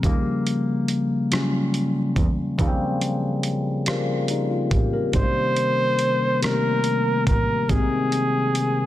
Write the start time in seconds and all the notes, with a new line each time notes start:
0.03 D#2 C#3 F3 G3 A#3, kick, closed hi-hat
0.47 closed hi-hat
0.88 closed hi-hat
1.31 C#3 F#3 C#4 F4, cross-stick, closed hi-hat
1.39 G3
1.74 closed hi-hat
2.16 E2, kick, closed hi-hat
2.58 D#2 C#3 F3 G3 A#3, kick, closed hi-hat
2.67 C4
3.01 closed hi-hat
3.43 closed hi-hat
3.86 C#3 F3 G3 A#3, cross-stick, closed hi-hat
4.28 G3 D#4, closed hi-hat
4.51 F4
4.71 A1 A#3 G4, kick, closed hi-hat
4.93 C#4 A#4
5.13 G#1 C3 D#3 G3 G#3 C5, kick, closed hi-hat
5.23 A#3
5.56 closed hi-hat
5.99 closed hi-hat
6.41 C3 D#3 G3 A3 A#4, cross-stick, closed hi-hat
6.52 A#3
6.84 closed hi-hat
7.27 A1 A#4, kick, closed hi-hat
7.69 G#1 C3 D#3 G#3 C4 G#4, kick, closed hi-hat
8.12 closed hi-hat
8.55 closed hi-hat